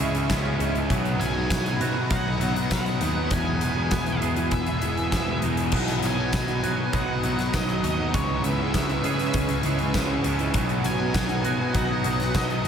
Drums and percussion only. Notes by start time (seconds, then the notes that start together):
0.15 closed hi-hat
0.30 kick, snare, closed hi-hat, tambourine
0.60 closed hi-hat
0.75 closed hi-hat
0.90 kick, closed hi-hat
1.05 closed hi-hat
1.21 closed hi-hat
1.50 kick, snare, closed hi-hat, tambourine
1.66 closed hi-hat
1.81 closed hi-hat
2.10 kick, closed hi-hat
2.41 closed hi-hat
2.56 closed hi-hat
2.71 kick, snare, closed hi-hat, tambourine
2.86 closed hi-hat
3.01 closed hi-hat
3.31 kick, closed hi-hat
3.61 closed hi-hat
3.91 kick, snare, closed hi-hat, tambourine
4.06 closed hi-hat
4.22 closed hi-hat
4.36 closed hi-hat
4.51 kick, closed hi-hat
4.66 closed hi-hat
4.82 closed hi-hat
4.97 closed hi-hat
5.12 kick, snare, closed hi-hat, tambourine
5.42 closed hi-hat
5.57 closed hi-hat
5.72 kick, crash
5.88 closed hi-hat
6.03 closed hi-hat
6.33 kick, snare, closed hi-hat, tambourine
6.48 closed hi-hat
6.64 closed hi-hat
6.93 kick, closed hi-hat
7.23 closed hi-hat
7.39 snare, closed hi-hat
7.53 kick, snare, closed hi-hat, tambourine
7.69 closed hi-hat
7.84 closed hi-hat
8.14 kick, closed hi-hat
8.44 closed hi-hat
8.74 kick, snare, closed hi-hat, tambourine
8.89 closed hi-hat
9.04 closed hi-hat
9.19 closed hi-hat
9.34 kick, closed hi-hat
9.49 closed hi-hat
9.63 closed hi-hat
9.79 closed hi-hat
9.94 kick, snare, closed hi-hat, tambourine
10.24 closed hi-hat
10.39 closed hi-hat
10.54 kick, closed hi-hat
10.69 closed hi-hat
10.84 closed hi-hat
11.14 kick, snare, closed hi-hat, tambourine
11.29 closed hi-hat
11.44 closed hi-hat
11.74 kick, closed hi-hat
12.04 closed hi-hat
12.20 snare, closed hi-hat
12.34 kick, snare, closed hi-hat, tambourine
12.50 closed hi-hat